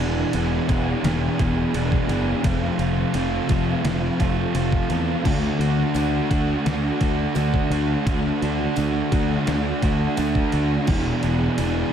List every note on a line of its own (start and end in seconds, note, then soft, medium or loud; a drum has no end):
0.00 0.22 E1 loud
0.00 0.32 E2 loud
0.00 0.34 B2 loud
0.00 0.33 E3 loud
0.00 0.33 B3 medium
0.00 0.34 D4 medium
0.00 0.35 G#4 medium
0.17 snare soft
0.33 0.58 E1 loud
0.33 1.02 E2 medium
0.33 0.71 B2 medium
0.33 1.03 E3 medium
0.33 0.70 B3 medium
0.33 0.69 D4 medium
0.33 0.68 G#4 medium
0.33 ride loud
0.68 0.93 E1 loud
0.68 1.04 B2 medium
0.68 1.06 E3 medium
0.68 1.03 B3 medium
0.68 1.04 D4 medium
0.68 1.04 G#4 medium
0.68 kick medium
0.68 ride medium
1.03 1.28 E1 loud
1.03 1.72 E2 medium
1.03 1.74 B2 medium
1.03 1.73 E3 loud
1.03 1.40 B3 medium
1.03 1.39 D4 loud
1.03 1.38 G#4 loud
1.03 snare loud
1.03 ride loud
1.39 1.63 E1 loud
1.39 1.74 B3 medium
1.39 1.74 D4 medium
1.39 1.75 G#4 medium
1.39 kick medium
1.39 ride medium
1.73 1.98 E1 loud
1.73 2.42 E2 medium
1.73 2.10 B2 medium
1.73 2.42 E3 medium
1.73 2.10 B3 medium
1.73 2.09 D4 medium
1.73 2.08 G#4 medium
1.73 ride loud
1.92 kick medium
2.08 2.32 F#1 loud
2.08 2.43 B2 medium
2.08 2.42 E3 medium
2.08 2.43 B3 medium
2.08 2.43 D4 medium
2.08 2.42 G#4 medium
2.08 ride medium
2.43 2.68 F1 loud
2.43 3.12 F2 loud
2.43 3.14 C3 loud
2.43 3.13 F3 loud
2.43 2.81 A3 loud
2.43 2.79 C4 loud
2.43 2.78 F4 loud
2.43 kick loud
2.43 ride loud
2.79 3.03 F1 medium
2.79 3.14 A3 medium
2.79 3.14 C4 medium
2.79 3.15 F4 medium
2.79 ride medium
2.97 snare soft
3.14 3.38 F1 medium
3.14 3.82 F2 medium
3.14 3.50 C3 medium
3.14 3.83 F3 medium
3.14 3.50 A3 medium
3.14 3.49 C4 medium
3.14 3.48 F4 loud
3.14 ride loud
3.48 3.73 F1 medium
3.48 3.84 C3 medium
3.48 3.85 F3 medium
3.48 3.84 A3 medium
3.48 3.85 C4 medium
3.48 3.85 F4 medium
3.48 kick loud
3.48 ride medium
3.83 4.08 F1 loud
3.83 4.53 F2 medium
3.83 4.55 C3 medium
3.83 4.53 F3 loud
3.83 4.21 A3 medium
3.83 4.20 C4 loud
3.83 4.18 F4 medium
3.83 snare loud
3.83 ride loud
4.20 4.44 F1 loud
4.20 4.55 A3 medium
4.20 4.54 C4 medium
4.20 4.55 F4 medium
4.20 kick medium
4.20 ride medium
4.54 4.79 F1 medium
4.54 5.23 F2 medium
4.54 4.92 C3 medium
4.54 5.23 F3 medium
4.54 4.91 A3 medium
4.54 4.89 C4 medium
4.54 4.88 F4 medium
4.54 ride loud
4.72 kick loud
4.89 5.14 E2 medium
4.89 5.23 C3 medium
4.89 5.23 F3 medium
4.89 5.25 A3 medium
4.89 5.24 C4 medium
4.89 5.23 F4 medium
4.89 ride medium
5.24 5.49 D2 loud
5.24 5.95 D3 loud
5.24 5.61 A3 loud
5.24 5.60 D4 loud
5.24 5.59 F#4 loud
5.24 kick loud
5.24 crash loud
5.59 5.83 D2 medium
5.59 5.96 A3 medium
5.59 5.96 D4 medium
5.59 5.97 F#4 medium
5.59 ride medium
5.79 snare soft
5.94 6.19 D2 medium
5.94 6.65 D3 medium
5.94 6.32 A3 medium
5.94 6.31 D4 medium
5.94 6.29 F#4 medium
5.94 ride loud
5.94 tambourine loud
6.30 6.55 D2 medium
6.30 6.65 A3 medium
6.30 6.66 D4 medium
6.30 6.66 F#4 medium
6.30 kick medium
6.30 ride medium
6.65 6.90 D2 medium
6.65 7.34 D3 medium
6.65 7.01 A3 medium
6.65 7.01 D4 loud
6.65 6.99 F#4 loud
6.65 snare loud
6.65 ride loud
7.00 7.25 D2 medium
7.00 7.35 A3 medium
7.00 7.36 D4 medium
7.00 7.36 F#4 medium
7.00 kick medium
7.00 ride medium
7.35 7.59 D2 medium
7.35 8.05 D3 medium
7.35 7.72 A3 medium
7.35 7.72 D4 medium
7.35 7.70 F#4 medium
7.35 ride loud
7.35 tambourine loud
7.54 kick loud
7.70 7.94 D2 medium
7.70 8.06 A3 medium
7.70 8.07 D4 medium
7.70 8.07 F#4 medium
7.70 ride medium
8.06 8.30 D2 loud
8.06 8.76 D3 loud
8.06 8.42 A3 loud
8.06 8.43 D4 loud
8.06 8.41 F#4 loud
8.06 kick loud
8.06 ride loud
8.42 8.66 D2 loud
8.42 8.77 A3 medium
8.42 8.78 D4 medium
8.42 8.78 F#4 medium
8.42 ride medium
8.60 snare soft
8.76 9.01 D2 medium
8.76 9.46 D3 medium
8.76 9.13 A3 medium
8.76 9.13 D4 medium
8.76 9.11 F#4 medium
8.76 ride loud
8.76 tambourine loud
9.12 9.36 D2 loud
9.12 9.47 A3 medium
9.12 9.47 D4 medium
9.12 9.48 F#4 medium
9.12 kick loud
9.12 ride medium
9.47 9.71 D2 loud
9.47 10.16 D3 medium
9.47 9.83 A3 medium
9.47 9.83 D4 loud
9.47 9.81 F#4 loud
9.47 snare loud
9.47 ride loud
9.82 10.06 D2 loud
9.82 10.17 A3 medium
9.82 10.18 D4 medium
9.82 10.18 F#4 medium
9.82 kick loud
9.82 ride medium
10.17 10.42 D2 loud
10.17 10.86 D3 medium
10.17 10.53 A3 medium
10.17 10.52 D4 medium
10.17 10.51 F#4 medium
10.17 ride loud
10.17 tambourine loud
10.35 kick medium
10.52 10.77 D2 medium
10.52 10.87 A3 medium
10.52 10.86 D4 medium
10.52 10.86 F#4 medium
10.52 ride medium
10.87 11.12 E1 loud
10.87 11.57 E2 medium
10.87 11.59 B2 loud
10.87 11.57 E3 loud
10.87 11.24 B3 loud
10.87 11.24 D4 loud
10.87 11.23 G#4 loud
10.87 kick loud
10.87 crash loud
11.23 11.47 E1 loud
11.23 11.58 B3 medium
11.23 11.59 D4 medium
11.23 11.59 G#4 medium
11.23 ride medium
11.41 snare soft
11.58 11.82 E1 loud
11.58 11.93 E2 medium
11.58 11.93 B2 medium
11.58 11.93 E3 medium
11.58 11.93 B3 medium
11.58 11.93 D4 loud
11.58 11.92 G#4 loud
11.58 ride loud
11.58 tambourine loud